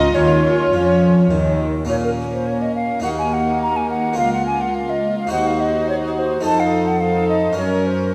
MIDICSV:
0, 0, Header, 1, 8, 480
1, 0, Start_track
1, 0, Key_signature, -5, "minor"
1, 0, Tempo, 578592
1, 1572, Time_signature, 4, 2, 24, 8
1, 2524, Tempo, 567108
1, 6844, End_track
2, 0, Start_track
2, 0, Title_t, "Flute"
2, 0, Program_c, 0, 73
2, 0, Note_on_c, 0, 75, 99
2, 120, Note_on_c, 0, 73, 72
2, 133, Note_off_c, 0, 75, 0
2, 1329, Note_off_c, 0, 73, 0
2, 1575, Note_on_c, 0, 73, 60
2, 1624, Note_off_c, 0, 73, 0
2, 1690, Note_on_c, 0, 70, 50
2, 1744, Note_off_c, 0, 70, 0
2, 1935, Note_on_c, 0, 72, 50
2, 2051, Note_on_c, 0, 73, 49
2, 2063, Note_off_c, 0, 72, 0
2, 2171, Note_on_c, 0, 75, 54
2, 2183, Note_off_c, 0, 73, 0
2, 2279, Note_off_c, 0, 75, 0
2, 2284, Note_on_c, 0, 77, 61
2, 2514, Note_off_c, 0, 77, 0
2, 2519, Note_on_c, 0, 78, 57
2, 2570, Note_off_c, 0, 78, 0
2, 2643, Note_on_c, 0, 80, 54
2, 2771, Note_on_c, 0, 78, 55
2, 2783, Note_off_c, 0, 80, 0
2, 3009, Note_off_c, 0, 78, 0
2, 3014, Note_on_c, 0, 82, 63
2, 3135, Note_on_c, 0, 80, 52
2, 3148, Note_off_c, 0, 82, 0
2, 3246, Note_off_c, 0, 80, 0
2, 3251, Note_on_c, 0, 78, 52
2, 3483, Note_off_c, 0, 78, 0
2, 3488, Note_on_c, 0, 77, 69
2, 3606, Note_off_c, 0, 77, 0
2, 3611, Note_on_c, 0, 78, 56
2, 3720, Note_off_c, 0, 78, 0
2, 3725, Note_on_c, 0, 80, 61
2, 3851, Note_on_c, 0, 78, 59
2, 3864, Note_off_c, 0, 80, 0
2, 3967, Note_on_c, 0, 77, 57
2, 3980, Note_off_c, 0, 78, 0
2, 4093, Note_on_c, 0, 75, 52
2, 4106, Note_off_c, 0, 77, 0
2, 4332, Note_off_c, 0, 75, 0
2, 4336, Note_on_c, 0, 77, 55
2, 4445, Note_off_c, 0, 77, 0
2, 4451, Note_on_c, 0, 78, 61
2, 4577, Note_on_c, 0, 77, 57
2, 4590, Note_off_c, 0, 78, 0
2, 4691, Note_on_c, 0, 75, 58
2, 4704, Note_off_c, 0, 77, 0
2, 4931, Note_off_c, 0, 75, 0
2, 4937, Note_on_c, 0, 73, 62
2, 4990, Note_off_c, 0, 73, 0
2, 5176, Note_on_c, 0, 72, 61
2, 5407, Note_off_c, 0, 72, 0
2, 5411, Note_on_c, 0, 81, 84
2, 5533, Note_on_c, 0, 77, 70
2, 5545, Note_off_c, 0, 81, 0
2, 5767, Note_on_c, 0, 78, 63
2, 5780, Note_off_c, 0, 77, 0
2, 5879, Note_on_c, 0, 77, 62
2, 5892, Note_off_c, 0, 78, 0
2, 6112, Note_off_c, 0, 77, 0
2, 6117, Note_on_c, 0, 75, 64
2, 6352, Note_off_c, 0, 75, 0
2, 6358, Note_on_c, 0, 73, 56
2, 6605, Note_on_c, 0, 72, 51
2, 6618, Note_off_c, 0, 73, 0
2, 6838, Note_off_c, 0, 72, 0
2, 6844, End_track
3, 0, Start_track
3, 0, Title_t, "Violin section"
3, 0, Program_c, 1, 48
3, 0, Note_on_c, 1, 75, 99
3, 114, Note_off_c, 1, 75, 0
3, 121, Note_on_c, 1, 73, 75
3, 1330, Note_off_c, 1, 73, 0
3, 1573, Note_on_c, 1, 70, 37
3, 4417, Note_off_c, 1, 70, 0
3, 4453, Note_on_c, 1, 72, 48
3, 5397, Note_off_c, 1, 72, 0
3, 5407, Note_on_c, 1, 72, 50
3, 5850, Note_off_c, 1, 72, 0
3, 5883, Note_on_c, 1, 72, 47
3, 6352, Note_off_c, 1, 72, 0
3, 6361, Note_on_c, 1, 70, 54
3, 6830, Note_off_c, 1, 70, 0
3, 6844, End_track
4, 0, Start_track
4, 0, Title_t, "Violin section"
4, 0, Program_c, 2, 48
4, 0, Note_on_c, 2, 63, 77
4, 118, Note_off_c, 2, 63, 0
4, 127, Note_on_c, 2, 61, 58
4, 1309, Note_off_c, 2, 61, 0
4, 1581, Note_on_c, 2, 61, 38
4, 2495, Note_off_c, 2, 61, 0
4, 2524, Note_on_c, 2, 63, 42
4, 3489, Note_off_c, 2, 63, 0
4, 3494, Note_on_c, 2, 65, 46
4, 4433, Note_off_c, 2, 65, 0
4, 4458, Note_on_c, 2, 66, 47
4, 5394, Note_off_c, 2, 66, 0
4, 5414, Note_on_c, 2, 69, 43
4, 5854, Note_off_c, 2, 69, 0
4, 5893, Note_on_c, 2, 69, 51
4, 6357, Note_off_c, 2, 69, 0
4, 6364, Note_on_c, 2, 70, 50
4, 6834, Note_off_c, 2, 70, 0
4, 6844, End_track
5, 0, Start_track
5, 0, Title_t, "Viola section"
5, 0, Program_c, 3, 48
5, 0, Note_on_c, 3, 65, 70
5, 1404, Note_off_c, 3, 65, 0
5, 1571, Note_on_c, 3, 58, 49
5, 4416, Note_off_c, 3, 58, 0
5, 4448, Note_on_c, 3, 63, 41
5, 5398, Note_off_c, 3, 63, 0
5, 5408, Note_on_c, 3, 63, 48
5, 5851, Note_off_c, 3, 63, 0
5, 5888, Note_on_c, 3, 63, 51
5, 6355, Note_off_c, 3, 63, 0
5, 6361, Note_on_c, 3, 61, 48
5, 6832, Note_off_c, 3, 61, 0
5, 6844, End_track
6, 0, Start_track
6, 0, Title_t, "Harpsichord"
6, 0, Program_c, 4, 6
6, 0, Note_on_c, 4, 49, 55
6, 0, Note_on_c, 4, 56, 49
6, 0, Note_on_c, 4, 61, 47
6, 0, Note_on_c, 4, 65, 50
6, 90, Note_off_c, 4, 56, 0
6, 91, Note_off_c, 4, 49, 0
6, 125, Note_on_c, 4, 51, 55
6, 575, Note_off_c, 4, 51, 0
6, 610, Note_on_c, 4, 53, 52
6, 1058, Note_off_c, 4, 53, 0
6, 1084, Note_on_c, 4, 51, 56
6, 1525, Note_off_c, 4, 61, 0
6, 1531, Note_off_c, 4, 65, 0
6, 1534, Note_on_c, 4, 58, 28
6, 1535, Note_off_c, 4, 51, 0
6, 1545, Note_on_c, 4, 61, 29
6, 1557, Note_on_c, 4, 65, 31
6, 1571, Note_on_c, 4, 46, 30
6, 2475, Note_off_c, 4, 58, 0
6, 2481, Note_off_c, 4, 61, 0
6, 2487, Note_off_c, 4, 65, 0
6, 2488, Note_on_c, 4, 58, 30
6, 2490, Note_off_c, 4, 46, 0
6, 2501, Note_on_c, 4, 63, 27
6, 2512, Note_on_c, 4, 66, 31
6, 2524, Note_on_c, 4, 39, 34
6, 3438, Note_off_c, 4, 58, 0
6, 3448, Note_off_c, 4, 63, 0
6, 3448, Note_on_c, 4, 58, 32
6, 3454, Note_off_c, 4, 66, 0
6, 3455, Note_off_c, 4, 39, 0
6, 3459, Note_on_c, 4, 65, 27
6, 3471, Note_on_c, 4, 70, 28
6, 3486, Note_on_c, 4, 37, 37
6, 4400, Note_off_c, 4, 58, 0
6, 4406, Note_off_c, 4, 65, 0
6, 4411, Note_on_c, 4, 63, 32
6, 4412, Note_off_c, 4, 70, 0
6, 4415, Note_off_c, 4, 37, 0
6, 4422, Note_on_c, 4, 66, 34
6, 4437, Note_on_c, 4, 72, 38
6, 4451, Note_on_c, 4, 39, 39
6, 5361, Note_off_c, 4, 63, 0
6, 5366, Note_off_c, 4, 66, 0
6, 5372, Note_on_c, 4, 63, 32
6, 5374, Note_off_c, 4, 72, 0
6, 5376, Note_off_c, 4, 39, 0
6, 5386, Note_on_c, 4, 69, 37
6, 5398, Note_on_c, 4, 72, 36
6, 5407, Note_on_c, 4, 41, 37
6, 6315, Note_off_c, 4, 63, 0
6, 6321, Note_on_c, 4, 61, 38
6, 6323, Note_off_c, 4, 69, 0
6, 6328, Note_off_c, 4, 41, 0
6, 6329, Note_off_c, 4, 72, 0
6, 6331, Note_on_c, 4, 70, 35
6, 6359, Note_on_c, 4, 42, 41
6, 6844, Note_off_c, 4, 42, 0
6, 6844, Note_off_c, 4, 61, 0
6, 6844, Note_off_c, 4, 70, 0
6, 6844, End_track
7, 0, Start_track
7, 0, Title_t, "Cello section"
7, 0, Program_c, 5, 48
7, 0, Note_on_c, 5, 49, 74
7, 113, Note_off_c, 5, 49, 0
7, 125, Note_on_c, 5, 51, 68
7, 598, Note_off_c, 5, 51, 0
7, 609, Note_on_c, 5, 53, 63
7, 1081, Note_off_c, 5, 53, 0
7, 1091, Note_on_c, 5, 51, 69
7, 1562, Note_off_c, 5, 51, 0
7, 1578, Note_on_c, 5, 46, 46
7, 2493, Note_off_c, 5, 46, 0
7, 2525, Note_on_c, 5, 39, 45
7, 3470, Note_off_c, 5, 39, 0
7, 3489, Note_on_c, 5, 37, 48
7, 4448, Note_on_c, 5, 39, 50
7, 4450, Note_off_c, 5, 37, 0
7, 5409, Note_off_c, 5, 39, 0
7, 5410, Note_on_c, 5, 41, 53
7, 6330, Note_off_c, 5, 41, 0
7, 6366, Note_on_c, 5, 42, 50
7, 6844, Note_off_c, 5, 42, 0
7, 6844, End_track
8, 0, Start_track
8, 0, Title_t, "Double bass section"
8, 0, Program_c, 6, 48
8, 0, Note_on_c, 6, 37, 81
8, 115, Note_off_c, 6, 37, 0
8, 125, Note_on_c, 6, 39, 75
8, 598, Note_off_c, 6, 39, 0
8, 611, Note_on_c, 6, 41, 81
8, 1082, Note_off_c, 6, 41, 0
8, 1092, Note_on_c, 6, 39, 78
8, 1563, Note_off_c, 6, 39, 0
8, 6844, End_track
0, 0, End_of_file